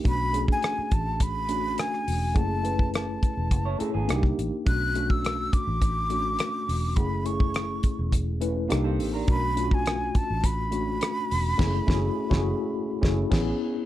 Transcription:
<<
  \new Staff \with { instrumentName = "Flute" } { \time 4/4 \key b \dorian \tempo 4 = 104 b''8. gis''8. a''8 b''4 gis''4 | a''4 a''2 r4 | fis'''8. e'''8. d'''2~ d'''8 | b''8 cis'''4. r2 |
b''8. gis''8. a''8 b''2~ | b''2. r4 | }
  \new Staff \with { instrumentName = "Clean electric guitar" } { \time 4/4 \key b \dorian r1 | r2 r16 <e' cis''>16 <cis' a'>16 <b gis'>8 r8. | r1 | r2. <a eis'>16 <c' a'>8 <d' bes'>16~ |
<d' bes'>16 r2. r8. | r1 | }
  \new Staff \with { instrumentName = "Tine electric piano" } { \time 4/4 \key b \dorian <a cis' d' fis'>8 <a cis' d' gis'>4.~ <a cis' d' gis'>16 r16 <a cis' d' fis'>4. | <a cis' e' gis'>8 <a cis' e' b'>4.~ <a cis' e' b'>16 r16 <a cis' e' gis'>8 <bes d' ees' fis' g'>4 | <a cis' d' fis'>8 <a cis' d' fis'>4.~ <a cis' d' fis'>16 r16 <a cis' d' fis'>4. | <a cis' e' gis'>8 <a cis' e' gis'>4.~ <a cis' e' gis'>16 r16 <a cis' e' b'>8 <bes d' ees' g'>4 |
<a cis' d' fis'>8 <a cis' d' eis' fis'>4.~ <a cis' d' eis' fis'>16 r16 <a cis' d' fis'>4. | <a cis' e' gis'>8 <a cis' e' fis' gis'>8 r16 <a cis' e' fis' gis'>8 r8. <a cis' e' gis'>8 <b cis' e' gis'>8 r8 | }
  \new Staff \with { instrumentName = "Fingered electric bass" } { \clef bass \time 4/4 \key b \dorian b,,4 r8 a,,4. r8 e,,8 | fis,,4. r16 e,,16 fis,,8 r16 gis,,16 c,8 a,,16 r16 | b,,4. r16 a,,4~ a,,16 r8 e,,8 | fis,,4. r16 e,,4~ e,,16 c,8 a,,8 |
b,,4. r16 a,,4~ a,,16 r8 e,,8 | fis,,8 fis,,8 r16 fis,,8 r8. fis,,8 a,,8 r8 | }
  \new DrumStaff \with { instrumentName = "Drums" } \drummode { \time 4/4 <hh bd>8 hh16 bd16 <hh ss>8 <hh bd>8 <hh bd>8 hh8 <hh ss>16 ss16 hho8 | <hh bd>8 hh16 bd16 <hh ss>8 <hh bd>8 <hh bd>8 hh8 <hh ss>16 <bd ss>16 hh8 | <hh bd>8 hh16 bd16 <hh ss>8 <hh bd>8 <hh bd>8 hh8 <hh ss>8 hho8 | <hh bd>8 hh16 bd16 <hh ss>8 <hh bd>8 <hh bd>8 hh8 <hh ss>8 hho8 |
<hh bd>8 hh16 bd16 <hh ss>8 <hh bd>8 <hh bd>8 hh8 <hh ss>8 hho8 | <cymc bd sn>8 <bd sn>8 r16 <bd sn>8. r8 <bd sn>8 <cymc bd sn>4 | }
>>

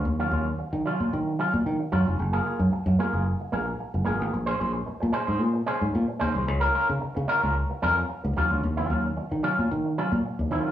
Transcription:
<<
  \new Staff \with { instrumentName = "Clean electric guitar" } { \time 4/4 \key ees \dorian \tempo 4 = 112 r16 <ges des' f'>16 <ges des' f'>16 r8. <ges des' f'>16 <ges des' f'>16 r8 <ges des' f'>16 r8. <ges des' f'>16 <ges des' f'>16 | r16 <bes f' aes'>16 <bes f' aes'>16 r8. <bes f' aes'>16 <bes f' aes'>16 r8 <bes f' aes'>16 r8. <bes f' aes'>16 <bes f' aes'>16 | r16 <des' aes' c''>16 <des' aes' c''>16 r8. <des' aes' c''>16 <des' aes' c''>16 r8 <des' aes' c''>16 r8. <des' aes' c''>16 <des' aes' c''>16 | r16 <des' f' bes'>16 <des' f' bes'>16 r8. <des' f' bes'>16 <des' f' bes'>16 r8 <des' f' bes'>16 r8. <ges des' f'>16 <ges des' f'>16 |
r16 <ges des' f'>16 <ges des' f'>16 r8. <ges des' f'>16 <ges des' f'>16 r8 <ges des' f'>16 r8. <ges des' f'>16 <ges des' f'>16 | }
  \new Staff \with { instrumentName = "Fingered electric bass" } { \clef bass \time 4/4 \key ees \dorian ees,8 ees,8 r16 ees16 r16 bes,16 ees8 r16 bes,16 ees16 r16 ges,16 f,,16 | ges,,8 r16 ges,16 r16 ges,16 r16 ges,,8 r16 bes,,8 r16 ges,,16 aes,,16 a,,16 | bes,,8 bes,,8 r16 bes,16 r16 aes,16 bes,8 r16 aes,16 bes,16 r16 ees,16 c,16 | des,8 r16 des16 r16 des16 r16 des,8 r16 f,8 r16 des,16 ees,16 d,16 |
ees,8 ees,8 r16 ees16 r16 bes,16 ees8 r16 bes,16 r16 ees,16 ees8 | }
>>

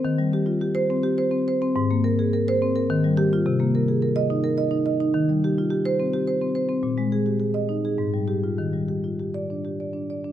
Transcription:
\new Staff \with { instrumentName = "Marimba" } { \time 3/4 \key ees \major \tempo 4 = 106 << { r4 r16 c''8 r4 r16 | r4 r16 c''8 r8. g'8 | r4 r16 ees''8 r4 r16 | r4 r16 c''8 r4 r16 |
r4 r16 ees''8 r8. g'8 | r4 r16 d''8 r4 r16 | } \\ { ees16 g16 g'16 f'16 g'8 c'16 g'16 c''16 c'16 c''16 c'16 | aes,16 bes16 bes'16 aes'16 bes'8 c'16 bes'16 ees16 g8 f'16 | c16 bes16 bes'16 aes'16 bes'8 ees'16 bes'16 ees''16 ees'16 ees''16 ees'16 | ees16 g16 g'16 f'16 g'8 c'16 g'16 c''16 c'16 c''16 c'16 |
bes,16 aes16 aes'16 g'16 aes'8 ees'16 aes'16 aes,16 g8 f'16 | ees16 g16 g'16 f'16 g'8 d'16 g'16 d''16 d'16 d''16 d'16 | } >> }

